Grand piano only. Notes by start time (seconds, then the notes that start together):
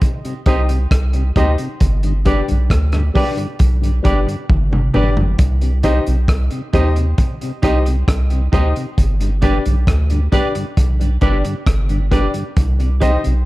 0.46 D#4 G4 C5 D#5
1.36 D#4 G4 C5 D#5
2.26 D4 G4 B4 D5
3.15 D4 G4 B4 D5
4.04 D4 G4 B4 D5
4.94 D4 G4 B4 D5
5.83 D#4 G4 C5 D#5
6.74 D#4 G4 C5 D#5
7.63 D#4 G4 C5 D#5
8.53 D#4 G4 C5 D#5
9.43 D4 G4 B4 D5
10.32 D4 G4 B4 D5
11.21 D4 G4 B4 D5
12.11 D4 G4 B4 D5
13.01 D#4 G4 C5 D#5